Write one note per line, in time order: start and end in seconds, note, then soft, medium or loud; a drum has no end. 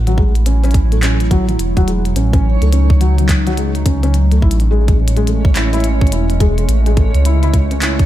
0.00 1.56 A1 loud
0.00 4.38 F#3 medium
0.00 8.06 A3 medium
0.00 2.14 E4 medium
0.00 8.06 C#5 medium
0.07 0.17 F#3 medium
0.07 closed hi-hat soft
0.18 0.30 G#3 medium
0.18 kick loud
0.35 closed hi-hat soft
0.46 0.62 C#4 medium
0.46 closed hi-hat medium
0.64 0.74 C#4 loud
0.64 closed hi-hat soft
0.71 kick loud
0.71 closed hi-hat soft
0.74 closed hi-hat medium
0.92 0.96 A3 medium
0.92 closed hi-hat soft
1.03 1.15 C#4 medium
1.03 clap loud
1.03 closed hi-hat medium
1.20 closed hi-hat soft
1.31 1.43 F#3 medium
1.31 kick loud
1.31 closed hi-hat medium
1.49 1.56 F#3 medium
1.49 closed hi-hat soft
1.59 2.13 E1 medium
1.59 closed hi-hat medium
1.77 1.87 F#3 loud
1.77 kick loud
1.77 closed hi-hat soft
1.88 2.00 G#3 medium
1.88 closed hi-hat medium
2.05 closed hi-hat soft
2.16 2.57 A1 loud
2.16 2.32 C#4 medium
2.16 4.40 D#4 medium
2.16 closed hi-hat medium
2.33 2.44 C#4 loud
2.33 kick loud
2.33 closed hi-hat soft
2.62 4.39 C#2 loud
2.62 2.66 A3 medium
2.62 closed hi-hat soft
2.73 2.85 C#4 medium
2.73 closed hi-hat medium
2.90 kick loud
3.01 3.13 F#3 loud
3.01 closed hi-hat medium
3.18 3.26 F#3 medium
3.18 closed hi-hat soft
3.29 kick loud
3.29 clap loud
3.29 closed hi-hat medium
3.47 3.57 F#3 loud
3.47 closed hi-hat soft
3.57 3.70 G#3 medium
3.57 closed hi-hat medium
3.75 closed hi-hat soft
3.86 4.02 C#4 medium
3.86 kick loud
3.86 closed hi-hat loud
4.03 4.13 C#4 loud
4.03 closed hi-hat soft
4.14 closed hi-hat medium
4.32 4.36 A3 medium
4.32 closed hi-hat soft
4.42 6.09 A1 loud
4.42 8.06 G#3 medium
4.42 8.06 C#4 medium
4.42 4.54 E4 medium
4.42 kick loud
4.51 closed hi-hat medium
4.60 closed hi-hat soft
4.71 4.83 G#3 loud
4.88 4.96 G#3 medium
4.88 kick loud
4.88 closed hi-hat soft
5.08 closed hi-hat medium
5.17 5.27 G#3 loud
5.17 closed hi-hat soft
5.27 5.39 A3 medium
5.27 closed hi-hat medium
5.45 kick loud
5.56 5.72 E4 medium
5.56 clap loud
5.56 closed hi-hat medium
5.73 5.83 E4 loud
5.73 closed hi-hat soft
5.80 closed hi-hat soft
5.84 closed hi-hat medium
6.01 6.06 C#4 medium
6.01 kick loud
6.07 closed hi-hat soft
6.12 6.66 E1 medium
6.12 6.24 E4 medium
6.12 closed hi-hat medium
6.30 closed hi-hat soft
6.40 6.53 G#3 loud
6.40 kick loud
6.40 closed hi-hat medium
6.58 6.65 G#3 medium
6.58 closed hi-hat soft
6.69 7.10 A1 loud
6.69 closed hi-hat medium
6.86 6.97 G#3 loud
6.86 closed hi-hat soft
6.97 7.09 A3 medium
6.97 kick loud
6.97 closed hi-hat soft
7.15 8.06 C#2 loud
7.15 closed hi-hat soft
7.25 7.42 E4 medium
7.25 closed hi-hat medium
7.43 7.53 E4 loud
7.43 closed hi-hat soft
7.54 kick loud
7.54 closed hi-hat medium
7.71 7.76 C#4 medium
7.71 closed hi-hat soft
7.82 7.94 E4 medium
7.82 clap loud
7.82 closed hi-hat medium
7.99 kick loud
7.99 closed hi-hat soft